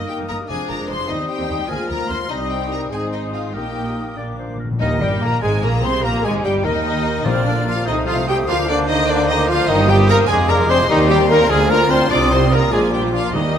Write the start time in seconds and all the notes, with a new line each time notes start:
Already playing: A#3 D#4 A#4 D#6
0.01 A#3
0.09 G4 G5
0.19 G2 A#3
0.29 G1 G2 A#3 A#4 A#5
0.40 G2 G3
0.49 F1 F2 F3 G#3 D4 G#4 G#5 D6
0.69 F1 F2 F3 A#4 A#5
0.79 F2 G#3
0.89 F1 F2 G#3 C5 C6
0.99 F2 F3
1.08 D#2 G3 C4 D#4 C5 D#5 D#6
1.19 D#2 C4
1.30 G4 G5
1.39 D#2 C4
1.49 D#2 C4
1.59 D#2 G3
1.68 D2 F3 A#3 F4 G#4 A#4 G#5 F6
1.89 D2 F3 A#4 A#5
1.98 D2 A#3
2.09 D2 A#3 C5 C6
2.20 D2 F3
2.29 C2 G3 C4 D#4 C5 D#5 D#6
2.52 G4 G5
2.72 A#4 A#5
2.91 G#1 G#2 G#3 C4 D#4 G#4 C5 G#5 D#6
3.13 D#4 D#5
3.32 F4 F5
3.54 A#1 A#2 A#3 D#4 G4 A#4 G5 D#6
4.17 A#1 A#2 A#3 D4 D5 D6
4.25 A#2
4.33 A#2
4.38 A#2 C5
4.48 A#2
4.56 A#2 A#4
4.65 A#2
4.71 A#2
4.79 D#2 D#3 D#4 A#4 D#5
4.99 G1 G2 G3 G4 G5
5.21 A#1 A#2 A#3 A#4 A#5
5.41 G#1 G#2 G#3 G#4 G#5
5.61 A#1 A#2 A#3 A#4 A#5
5.83 C2 C3 C4 C5 C6
6.03 A#1 A#2 A#3 G4 A#4 A#5
6.24 G#1 G#2 G#3 G#4 G#5
6.43 G1 G2 G3 G4 G5
6.64 D#2 D#3 D#4 A#4 D#5
7.24 A#1 A#2 C3 A#3 C4 F4 C5 D5 F6
7.45 D3 D4 D5
7.66 F3 F4 F5
7.86 C2 C3 D#3 A3 D#4 C5 D#5 D#6
8.05 F3 F4 F5
8.26 G3 G4 G5
8.47 D2 D3 F3 A#3 D4 F4 F5 D6
8.67 D3 D4 D5
8.87 D#3 D#4 D#5
9.08 D3 A#3 D4 D5 D6
9.29 D#3 D#4 D#5
9.49 F3 F4 F5
9.68 G1 G2 D#3 A#3 D#4 D#5 D#6
9.80 A#3 G4
9.89 G3 D#4 G4 G5
10.00 A#3 G4
10.08 A#3 D#4 A#4 A#5
10.19 A#3 G4
10.27 F1 F2 G#3 D4 G#4 G#5 D6
10.39 G#3 F4
10.48 G#3 A#3 D4 A#4 A#5
10.58 G#3 F4
10.69 G#3 C4 D4 C5 C6
10.79 G#3 F4
10.88 D#2 D#3 G3 D#4 G4 D#5 C6
11.00 C4 G4
11.08 G3 D#4 G4 G5
11.20 C4 G4
11.28 A#3 D#4 A#4 A#5
11.41 C4 G4
11.48 D2 F3 G#3 D4 F4 G#4 G#5 F6
11.60 A#3 D4
11.68 A#3 D4 F4 A#4 A#5
11.79 A#3 D4
11.87 C4 D4 F4 C5
11.91 C6
12.01 A#3 D4
12.08 C2 C3 G3 C4 D4 D#4 D5 D6 D#6
12.21 G3 C4
12.29 C4 D#4 C5 C6
12.40 G3 C4
12.50 A#3 C4 D#4 A#4 A#5
12.61 G3 C4
12.70 A#1 A#2 F3 G#3 D4 F4 G#4 G#5 D6
12.82 A#3 F4
12.92 G3 D4 G4 G5
13.03 A#3 F4
13.13 F3 D4 F4 F5
13.23 A#3 F4
13.33 D#2 D#3 G3 A#3 D#4 G4 D#5 D#6
13.43 G3 D#4
13.55 A#3